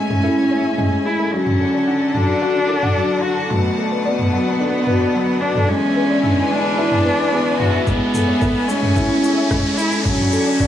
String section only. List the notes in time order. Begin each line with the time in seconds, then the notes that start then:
Already playing: C#4 E5 G#5
1.33 D3 A4 F#5 A5
3.51 B4
5.69 D3 B4 E5 G#5
7.87 C#4 G#5
10.05 D3 F#5 A5